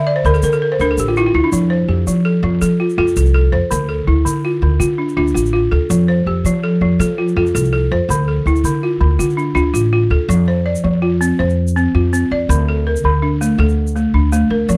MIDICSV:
0, 0, Header, 1, 4, 480
1, 0, Start_track
1, 0, Key_signature, -1, "major"
1, 0, Tempo, 365854
1, 1997, Time_signature, 12, 3, 24, 8
1, 19378, End_track
2, 0, Start_track
2, 0, Title_t, "Balafon"
2, 0, Program_c, 0, 12
2, 0, Note_on_c, 0, 50, 81
2, 0, Note_on_c, 0, 76, 70
2, 88, Note_on_c, 0, 74, 80
2, 187, Note_off_c, 0, 76, 0
2, 208, Note_on_c, 0, 72, 70
2, 307, Note_off_c, 0, 74, 0
2, 317, Note_off_c, 0, 50, 0
2, 333, Note_on_c, 0, 50, 83
2, 338, Note_on_c, 0, 70, 71
2, 427, Note_off_c, 0, 72, 0
2, 446, Note_on_c, 0, 69, 71
2, 552, Note_off_c, 0, 70, 0
2, 575, Note_on_c, 0, 70, 75
2, 666, Note_off_c, 0, 69, 0
2, 695, Note_on_c, 0, 69, 68
2, 791, Note_off_c, 0, 70, 0
2, 806, Note_off_c, 0, 50, 0
2, 813, Note_on_c, 0, 70, 72
2, 911, Note_off_c, 0, 69, 0
2, 943, Note_on_c, 0, 72, 72
2, 1030, Note_off_c, 0, 70, 0
2, 1062, Note_on_c, 0, 62, 79
2, 1065, Note_on_c, 0, 70, 73
2, 1155, Note_off_c, 0, 72, 0
2, 1192, Note_on_c, 0, 69, 72
2, 1276, Note_off_c, 0, 70, 0
2, 1307, Note_on_c, 0, 67, 72
2, 1400, Note_off_c, 0, 69, 0
2, 1421, Note_on_c, 0, 65, 68
2, 1517, Note_off_c, 0, 67, 0
2, 1524, Note_off_c, 0, 65, 0
2, 1530, Note_off_c, 0, 62, 0
2, 1537, Note_on_c, 0, 64, 70
2, 1540, Note_on_c, 0, 65, 79
2, 1643, Note_off_c, 0, 65, 0
2, 1658, Note_on_c, 0, 65, 73
2, 1751, Note_off_c, 0, 64, 0
2, 1770, Note_on_c, 0, 64, 77
2, 1872, Note_off_c, 0, 65, 0
2, 1887, Note_on_c, 0, 62, 68
2, 1987, Note_off_c, 0, 64, 0
2, 2005, Note_on_c, 0, 53, 75
2, 2106, Note_off_c, 0, 62, 0
2, 2232, Note_on_c, 0, 72, 65
2, 2475, Note_on_c, 0, 67, 66
2, 2480, Note_off_c, 0, 53, 0
2, 2716, Note_on_c, 0, 53, 78
2, 2953, Note_off_c, 0, 72, 0
2, 2953, Note_on_c, 0, 69, 73
2, 3181, Note_off_c, 0, 53, 0
2, 3194, Note_off_c, 0, 67, 0
2, 3197, Note_on_c, 0, 53, 76
2, 3417, Note_off_c, 0, 69, 0
2, 3433, Note_on_c, 0, 69, 77
2, 3672, Note_on_c, 0, 65, 62
2, 3675, Note_off_c, 0, 53, 0
2, 3894, Note_off_c, 0, 65, 0
2, 3898, Note_off_c, 0, 69, 0
2, 3910, Note_on_c, 0, 65, 82
2, 3913, Note_on_c, 0, 69, 65
2, 4142, Note_off_c, 0, 69, 0
2, 4157, Note_on_c, 0, 69, 66
2, 4371, Note_off_c, 0, 69, 0
2, 4387, Note_on_c, 0, 69, 79
2, 4391, Note_off_c, 0, 65, 0
2, 4623, Note_on_c, 0, 72, 70
2, 4863, Note_on_c, 0, 50, 78
2, 4869, Note_off_c, 0, 69, 0
2, 5100, Note_on_c, 0, 69, 65
2, 5107, Note_off_c, 0, 72, 0
2, 5345, Note_on_c, 0, 64, 65
2, 5347, Note_off_c, 0, 50, 0
2, 5580, Note_on_c, 0, 50, 78
2, 5825, Note_off_c, 0, 69, 0
2, 5834, Note_on_c, 0, 65, 66
2, 6050, Note_off_c, 0, 50, 0
2, 6065, Note_on_c, 0, 50, 73
2, 6067, Note_off_c, 0, 64, 0
2, 6280, Note_off_c, 0, 65, 0
2, 6296, Note_on_c, 0, 65, 74
2, 6537, Note_on_c, 0, 62, 63
2, 6547, Note_off_c, 0, 50, 0
2, 6763, Note_off_c, 0, 65, 0
2, 6766, Note_off_c, 0, 62, 0
2, 6779, Note_on_c, 0, 65, 67
2, 6782, Note_on_c, 0, 62, 82
2, 6997, Note_off_c, 0, 65, 0
2, 7013, Note_on_c, 0, 65, 70
2, 7242, Note_off_c, 0, 65, 0
2, 7257, Note_on_c, 0, 65, 79
2, 7265, Note_off_c, 0, 62, 0
2, 7498, Note_on_c, 0, 69, 73
2, 7741, Note_on_c, 0, 53, 77
2, 7742, Note_off_c, 0, 65, 0
2, 7981, Note_on_c, 0, 72, 67
2, 7982, Note_off_c, 0, 69, 0
2, 8224, Note_off_c, 0, 53, 0
2, 8228, Note_on_c, 0, 67, 64
2, 8472, Note_on_c, 0, 53, 80
2, 8703, Note_off_c, 0, 72, 0
2, 8705, Note_on_c, 0, 69, 75
2, 8927, Note_off_c, 0, 53, 0
2, 8942, Note_on_c, 0, 53, 81
2, 8947, Note_off_c, 0, 67, 0
2, 9168, Note_off_c, 0, 69, 0
2, 9184, Note_on_c, 0, 69, 78
2, 9423, Note_on_c, 0, 65, 66
2, 9424, Note_off_c, 0, 53, 0
2, 9649, Note_off_c, 0, 65, 0
2, 9650, Note_off_c, 0, 69, 0
2, 9665, Note_on_c, 0, 65, 80
2, 9666, Note_on_c, 0, 69, 63
2, 9885, Note_off_c, 0, 69, 0
2, 9901, Note_on_c, 0, 69, 70
2, 10122, Note_off_c, 0, 69, 0
2, 10138, Note_on_c, 0, 69, 86
2, 10144, Note_off_c, 0, 65, 0
2, 10387, Note_on_c, 0, 72, 81
2, 10621, Note_off_c, 0, 69, 0
2, 10632, Note_on_c, 0, 50, 80
2, 10863, Note_on_c, 0, 69, 64
2, 10865, Note_off_c, 0, 72, 0
2, 11108, Note_off_c, 0, 50, 0
2, 11110, Note_on_c, 0, 64, 69
2, 11352, Note_on_c, 0, 50, 78
2, 11583, Note_off_c, 0, 69, 0
2, 11587, Note_on_c, 0, 65, 70
2, 11799, Note_off_c, 0, 50, 0
2, 11815, Note_on_c, 0, 50, 69
2, 11827, Note_off_c, 0, 64, 0
2, 12043, Note_off_c, 0, 65, 0
2, 12059, Note_on_c, 0, 65, 70
2, 12296, Note_on_c, 0, 62, 63
2, 12299, Note_off_c, 0, 50, 0
2, 12510, Note_off_c, 0, 65, 0
2, 12513, Note_off_c, 0, 62, 0
2, 12526, Note_on_c, 0, 65, 66
2, 12529, Note_on_c, 0, 62, 74
2, 12759, Note_off_c, 0, 65, 0
2, 12775, Note_on_c, 0, 65, 70
2, 13009, Note_off_c, 0, 65, 0
2, 13016, Note_off_c, 0, 62, 0
2, 13025, Note_on_c, 0, 65, 79
2, 13265, Note_on_c, 0, 69, 70
2, 13504, Note_on_c, 0, 53, 78
2, 13505, Note_off_c, 0, 65, 0
2, 13745, Note_off_c, 0, 69, 0
2, 13748, Note_on_c, 0, 72, 61
2, 13982, Note_on_c, 0, 74, 58
2, 13985, Note_off_c, 0, 53, 0
2, 14219, Note_on_c, 0, 53, 73
2, 14459, Note_on_c, 0, 65, 70
2, 14467, Note_off_c, 0, 72, 0
2, 14703, Note_off_c, 0, 53, 0
2, 14704, Note_off_c, 0, 74, 0
2, 14704, Note_on_c, 0, 60, 74
2, 14945, Note_on_c, 0, 72, 71
2, 15183, Note_off_c, 0, 65, 0
2, 15186, Note_off_c, 0, 60, 0
2, 15433, Note_on_c, 0, 60, 79
2, 15667, Note_off_c, 0, 72, 0
2, 15675, Note_on_c, 0, 65, 61
2, 15897, Note_off_c, 0, 60, 0
2, 15913, Note_on_c, 0, 60, 73
2, 16160, Note_on_c, 0, 74, 75
2, 16391, Note_off_c, 0, 60, 0
2, 16393, Note_off_c, 0, 65, 0
2, 16397, Note_on_c, 0, 50, 77
2, 16635, Note_off_c, 0, 74, 0
2, 16643, Note_on_c, 0, 69, 60
2, 16874, Note_off_c, 0, 50, 0
2, 16882, Note_on_c, 0, 70, 66
2, 17122, Note_on_c, 0, 50, 84
2, 17349, Note_on_c, 0, 62, 72
2, 17358, Note_off_c, 0, 69, 0
2, 17594, Note_on_c, 0, 57, 76
2, 17597, Note_off_c, 0, 50, 0
2, 17598, Note_off_c, 0, 70, 0
2, 17840, Note_on_c, 0, 69, 70
2, 18072, Note_off_c, 0, 62, 0
2, 18074, Note_off_c, 0, 57, 0
2, 18313, Note_on_c, 0, 57, 67
2, 18555, Note_on_c, 0, 62, 69
2, 18558, Note_off_c, 0, 69, 0
2, 18780, Note_off_c, 0, 57, 0
2, 18796, Note_on_c, 0, 57, 82
2, 19034, Note_on_c, 0, 70, 67
2, 19276, Note_off_c, 0, 57, 0
2, 19276, Note_off_c, 0, 62, 0
2, 19277, Note_on_c, 0, 53, 82
2, 19378, Note_off_c, 0, 53, 0
2, 19378, Note_off_c, 0, 70, 0
2, 19378, End_track
3, 0, Start_track
3, 0, Title_t, "Upright bass"
3, 0, Program_c, 1, 32
3, 0, Note_on_c, 1, 50, 85
3, 234, Note_off_c, 1, 50, 0
3, 320, Note_on_c, 1, 38, 93
3, 519, Note_off_c, 1, 38, 0
3, 561, Note_on_c, 1, 50, 88
3, 958, Note_off_c, 1, 50, 0
3, 1042, Note_on_c, 1, 38, 89
3, 1239, Note_off_c, 1, 38, 0
3, 1277, Note_on_c, 1, 33, 78
3, 1675, Note_off_c, 1, 33, 0
3, 1760, Note_on_c, 1, 38, 92
3, 1859, Note_off_c, 1, 38, 0
3, 1995, Note_on_c, 1, 41, 96
3, 2393, Note_off_c, 1, 41, 0
3, 2471, Note_on_c, 1, 41, 86
3, 2672, Note_off_c, 1, 41, 0
3, 2714, Note_on_c, 1, 53, 80
3, 3112, Note_off_c, 1, 53, 0
3, 3184, Note_on_c, 1, 41, 98
3, 3387, Note_off_c, 1, 41, 0
3, 3431, Note_on_c, 1, 53, 85
3, 3830, Note_off_c, 1, 53, 0
3, 3908, Note_on_c, 1, 41, 96
3, 4109, Note_off_c, 1, 41, 0
3, 4152, Note_on_c, 1, 36, 89
3, 4550, Note_off_c, 1, 36, 0
3, 4624, Note_on_c, 1, 41, 93
3, 4727, Note_off_c, 1, 41, 0
3, 4871, Note_on_c, 1, 38, 107
3, 5269, Note_off_c, 1, 38, 0
3, 5344, Note_on_c, 1, 38, 84
3, 5546, Note_off_c, 1, 38, 0
3, 5584, Note_on_c, 1, 50, 81
3, 5984, Note_off_c, 1, 50, 0
3, 6061, Note_on_c, 1, 38, 93
3, 6263, Note_off_c, 1, 38, 0
3, 6293, Note_on_c, 1, 50, 89
3, 6697, Note_off_c, 1, 50, 0
3, 6781, Note_on_c, 1, 38, 93
3, 6983, Note_off_c, 1, 38, 0
3, 7019, Note_on_c, 1, 33, 93
3, 7420, Note_off_c, 1, 33, 0
3, 7500, Note_on_c, 1, 38, 92
3, 7603, Note_off_c, 1, 38, 0
3, 7739, Note_on_c, 1, 41, 110
3, 8140, Note_off_c, 1, 41, 0
3, 8217, Note_on_c, 1, 41, 84
3, 8420, Note_off_c, 1, 41, 0
3, 8455, Note_on_c, 1, 53, 89
3, 8857, Note_off_c, 1, 53, 0
3, 8935, Note_on_c, 1, 41, 89
3, 9138, Note_off_c, 1, 41, 0
3, 9176, Note_on_c, 1, 53, 98
3, 9578, Note_off_c, 1, 53, 0
3, 9662, Note_on_c, 1, 41, 98
3, 9862, Note_off_c, 1, 41, 0
3, 9903, Note_on_c, 1, 36, 91
3, 10301, Note_off_c, 1, 36, 0
3, 10384, Note_on_c, 1, 41, 92
3, 10484, Note_off_c, 1, 41, 0
3, 10610, Note_on_c, 1, 38, 104
3, 11014, Note_off_c, 1, 38, 0
3, 11094, Note_on_c, 1, 38, 82
3, 11297, Note_off_c, 1, 38, 0
3, 11331, Note_on_c, 1, 50, 87
3, 11734, Note_off_c, 1, 50, 0
3, 11814, Note_on_c, 1, 38, 93
3, 12017, Note_off_c, 1, 38, 0
3, 12059, Note_on_c, 1, 50, 93
3, 12459, Note_off_c, 1, 50, 0
3, 12530, Note_on_c, 1, 38, 86
3, 12735, Note_off_c, 1, 38, 0
3, 12776, Note_on_c, 1, 33, 90
3, 13178, Note_off_c, 1, 33, 0
3, 13254, Note_on_c, 1, 38, 94
3, 13358, Note_off_c, 1, 38, 0
3, 13494, Note_on_c, 1, 41, 115
3, 14096, Note_off_c, 1, 41, 0
3, 14225, Note_on_c, 1, 41, 87
3, 14823, Note_off_c, 1, 41, 0
3, 14952, Note_on_c, 1, 41, 91
3, 15548, Note_off_c, 1, 41, 0
3, 15672, Note_on_c, 1, 41, 90
3, 16069, Note_off_c, 1, 41, 0
3, 16152, Note_on_c, 1, 41, 87
3, 16350, Note_off_c, 1, 41, 0
3, 16389, Note_on_c, 1, 38, 113
3, 16987, Note_off_c, 1, 38, 0
3, 17108, Note_on_c, 1, 38, 82
3, 17707, Note_off_c, 1, 38, 0
3, 17821, Note_on_c, 1, 38, 106
3, 18424, Note_off_c, 1, 38, 0
3, 18548, Note_on_c, 1, 38, 85
3, 18949, Note_off_c, 1, 38, 0
3, 19026, Note_on_c, 1, 38, 89
3, 19229, Note_off_c, 1, 38, 0
3, 19268, Note_on_c, 1, 41, 110
3, 19378, Note_off_c, 1, 41, 0
3, 19378, End_track
4, 0, Start_track
4, 0, Title_t, "Drums"
4, 329, Note_on_c, 9, 82, 21
4, 449, Note_off_c, 9, 82, 0
4, 449, Note_on_c, 9, 82, 20
4, 558, Note_off_c, 9, 82, 0
4, 558, Note_on_c, 9, 82, 62
4, 683, Note_off_c, 9, 82, 0
4, 683, Note_on_c, 9, 82, 21
4, 814, Note_off_c, 9, 82, 0
4, 1050, Note_on_c, 9, 82, 20
4, 1181, Note_off_c, 9, 82, 0
4, 1282, Note_on_c, 9, 82, 70
4, 1413, Note_off_c, 9, 82, 0
4, 1525, Note_on_c, 9, 82, 21
4, 1656, Note_off_c, 9, 82, 0
4, 2000, Note_on_c, 9, 82, 69
4, 2131, Note_off_c, 9, 82, 0
4, 2720, Note_on_c, 9, 82, 59
4, 2851, Note_off_c, 9, 82, 0
4, 3434, Note_on_c, 9, 82, 64
4, 3565, Note_off_c, 9, 82, 0
4, 3798, Note_on_c, 9, 82, 19
4, 3930, Note_off_c, 9, 82, 0
4, 4036, Note_on_c, 9, 82, 22
4, 4151, Note_off_c, 9, 82, 0
4, 4151, Note_on_c, 9, 82, 67
4, 4272, Note_off_c, 9, 82, 0
4, 4272, Note_on_c, 9, 82, 22
4, 4403, Note_off_c, 9, 82, 0
4, 4874, Note_on_c, 9, 82, 71
4, 5005, Note_off_c, 9, 82, 0
4, 5595, Note_on_c, 9, 82, 71
4, 5726, Note_off_c, 9, 82, 0
4, 6310, Note_on_c, 9, 82, 65
4, 6441, Note_off_c, 9, 82, 0
4, 6677, Note_on_c, 9, 82, 19
4, 6808, Note_off_c, 9, 82, 0
4, 6920, Note_on_c, 9, 82, 21
4, 7042, Note_off_c, 9, 82, 0
4, 7042, Note_on_c, 9, 82, 74
4, 7158, Note_off_c, 9, 82, 0
4, 7158, Note_on_c, 9, 82, 23
4, 7290, Note_off_c, 9, 82, 0
4, 7745, Note_on_c, 9, 82, 66
4, 7876, Note_off_c, 9, 82, 0
4, 8471, Note_on_c, 9, 82, 67
4, 8602, Note_off_c, 9, 82, 0
4, 9191, Note_on_c, 9, 82, 55
4, 9322, Note_off_c, 9, 82, 0
4, 9553, Note_on_c, 9, 82, 18
4, 9684, Note_off_c, 9, 82, 0
4, 9792, Note_on_c, 9, 82, 20
4, 9914, Note_off_c, 9, 82, 0
4, 9914, Note_on_c, 9, 82, 68
4, 10034, Note_off_c, 9, 82, 0
4, 10034, Note_on_c, 9, 82, 23
4, 10165, Note_off_c, 9, 82, 0
4, 10634, Note_on_c, 9, 82, 62
4, 10765, Note_off_c, 9, 82, 0
4, 11113, Note_on_c, 9, 82, 21
4, 11228, Note_off_c, 9, 82, 0
4, 11228, Note_on_c, 9, 82, 21
4, 11344, Note_off_c, 9, 82, 0
4, 11344, Note_on_c, 9, 82, 62
4, 11475, Note_off_c, 9, 82, 0
4, 12070, Note_on_c, 9, 82, 64
4, 12199, Note_off_c, 9, 82, 0
4, 12199, Note_on_c, 9, 82, 18
4, 12313, Note_off_c, 9, 82, 0
4, 12313, Note_on_c, 9, 82, 19
4, 12445, Note_off_c, 9, 82, 0
4, 12549, Note_on_c, 9, 82, 20
4, 12680, Note_off_c, 9, 82, 0
4, 12789, Note_on_c, 9, 82, 67
4, 12920, Note_off_c, 9, 82, 0
4, 13517, Note_on_c, 9, 82, 59
4, 13648, Note_off_c, 9, 82, 0
4, 14108, Note_on_c, 9, 82, 42
4, 14239, Note_off_c, 9, 82, 0
4, 14718, Note_on_c, 9, 82, 60
4, 14850, Note_off_c, 9, 82, 0
4, 15084, Note_on_c, 9, 82, 18
4, 15216, Note_off_c, 9, 82, 0
4, 15317, Note_on_c, 9, 82, 40
4, 15440, Note_off_c, 9, 82, 0
4, 15440, Note_on_c, 9, 82, 17
4, 15571, Note_off_c, 9, 82, 0
4, 15922, Note_on_c, 9, 82, 57
4, 16054, Note_off_c, 9, 82, 0
4, 16404, Note_on_c, 9, 82, 58
4, 16536, Note_off_c, 9, 82, 0
4, 17006, Note_on_c, 9, 82, 44
4, 17138, Note_off_c, 9, 82, 0
4, 17603, Note_on_c, 9, 82, 56
4, 17734, Note_off_c, 9, 82, 0
4, 17957, Note_on_c, 9, 82, 18
4, 18088, Note_off_c, 9, 82, 0
4, 18198, Note_on_c, 9, 82, 39
4, 18319, Note_off_c, 9, 82, 0
4, 18319, Note_on_c, 9, 82, 18
4, 18450, Note_off_c, 9, 82, 0
4, 18796, Note_on_c, 9, 82, 66
4, 18927, Note_off_c, 9, 82, 0
4, 19276, Note_on_c, 9, 82, 55
4, 19378, Note_off_c, 9, 82, 0
4, 19378, End_track
0, 0, End_of_file